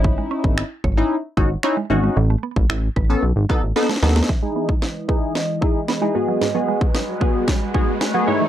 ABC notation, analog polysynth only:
X:1
M:4/4
L:1/16
Q:1/4=113
K:E
V:1 name="Analog polysynth"
[CDE]4 z3 [CDE] z2 [CDF] z [CDE] z [CDF]2 | z6 z [B,CA] z2 [B,DA] z [B,DA] z [B,DA]2 | z [DEG]2 z3 [DEG]2 z2 [DEG] z2 [DEG] [B,FG]2 | z [B,FG]2 z3 [B,FG]2 z2 [B,FG] z2 [B,FG] [G,DEc]2 |]